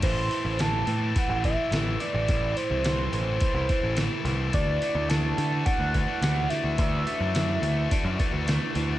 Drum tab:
CC |x-------|--------|--------|--------|
HH |oooooooo|oooooooo|oooooooo|oooooooo|
SD |--o---o-|--o---oo|--o---oo|--o---o-|
BD |o---oo--|o---oo--|o---oo--|o---oo--|